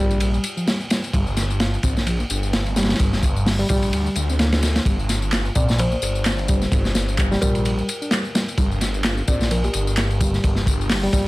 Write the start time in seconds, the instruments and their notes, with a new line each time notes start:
Already playing: detuned saw bass A#1, reed electric piano G3
0.11 ride, tambourine
0.20 ride, tambourine
0.34 tambourine
0.44 ride, tambourine
0.57 reed electric piano F3, tambourine
0.67 reed electric piano G3, snare, ride, tambourine
0.80 tambourine
0.90 reed electric piano G3, snare, ride, tambourine
1.04 ride, tambourine
1.13 detuned saw bass G1, reed electric piano G3, kick, ride, tambourine
1.27 tambourine
1.37 snare, ride, tambourine
1.50 tambourine
1.60 reed electric piano F4, snare, ride, tambourine
1.74 tambourine
1.83 detuned saw bass A#1, reed electric piano C4, kick, ride, tambourine
1.97 snare, tambourine
2.06 reed electric piano F3, ride, tambourine
2.20 reed electric piano A#3, tambourine
2.30 detuned saw bass G1, ride, tambourine
2.43 tambourine
2.53 snare, ride, tambourine
2.66 ride, tambourine
2.76 reed electric piano G3, snare, ride, tambourine
2.83 snare, ride
2.89 snare, ride, tambourine
2.95 snare, ride
2.99 detuned saw bass G1, kick, ride, tambourine
3.13 snare, tambourine
3.23 kick, ride, tambourine
3.36 tambourine
3.46 reed electric piano G3, snare, open hi-hat, tambourine
3.59 reed electric piano G3, ride, tambourine
3.69 detuned saw bass A#1, reed electric piano G3, kick, ride, tambourine
3.82 ride, tambourine
3.92 detuned saw bass D2, ride, tambourine
4.06 tambourine
4.15 detuned saw bass D2, ride, tambourine
4.29 reed electric piano C4, tambourine
4.39 reed electric piano A#3, snare, ride, tambourine
4.52 snare, ride, tambourine
4.62 reed electric piano A#3, snare, ride, tambourine
4.76 reed electric piano A#3, snare, ride, tambourine
4.85 detuned saw bass G1, reed electric piano G3, kick, ride, tambourine
4.99 tambourine
5.09 snare, ride, tambourine
5.22 tambourine
5.32 reed electric piano F4, snare, clap, ride, tambourine
5.45 tambourine
5.55 detuned saw bass A#1, reed electric piano C4, kalimba D5, kick, ride, tambourine
5.68 snare, tambourine
5.79 reed electric piano F3, kalimba C5, ride, tambourine
5.92 reed electric piano A#3, tambourine
6.02 detuned saw bass G1, ride, tambourine
6.15 tambourine
6.25 snare, clap, ride, tambourine
6.38 ride, tambourine
6.48 reed electric piano G3, kick, ride, tambourine
6.62 snare, tambourine
6.72 detuned saw bass G1, kick, ride, tambourine
6.85 snare, tambourine
6.95 snare, ride, tambourine
7.08 tambourine
7.18 reed electric piano G3, kick, clap, ride, tambourine
7.31 reed electric piano G3, snare, tambourine
7.41 detuned saw bass A#1, reed electric piano G3, kalimba A#4, kick, ride, tambourine
7.55 ride, tambourine
7.65 ride, tambourine
7.79 tambourine
7.89 ride, tambourine
8.02 reed electric piano D4, tambourine
8.11 reed electric piano G3, snare, clap, ride, tambourine
8.25 tambourine
8.35 reed electric piano G3, snare, ride, tambourine
8.48 ride, tambourine
8.58 detuned saw bass G1, reed electric piano G3, kick, ride, tambourine
8.72 tambourine
8.81 snare, ride, tambourine
8.94 tambourine
9.04 reed electric piano F4, snare, clap, ride, tambourine
9.17 tambourine
9.28 detuned saw bass A#1, reed electric piano C4, kalimba D5, kick, ride, tambourine
9.41 snare, tambourine
9.51 reed electric piano F3, kalimba A#4, ride, tambourine
9.64 reed electric piano A#3, kalimba G4, tambourine
9.73 detuned saw bass G1, ride, tambourine
9.87 tambourine
9.97 snare, clap, ride, tambourine
10.11 ride, tambourine
10.20 reed electric piano G3, kick, ride, tambourine
10.34 snare, tambourine
10.44 detuned saw bass G1, kick, ride, tambourine
10.56 snare, tambourine
10.66 kick, ride, tambourine
10.81 tambourine
10.89 reed electric piano G3, snare, clap, open hi-hat, tambourine
11.03 reed electric piano G3, ride, tambourine
11.13 detuned saw bass A#1, reed electric piano G3, kick, ride, tambourine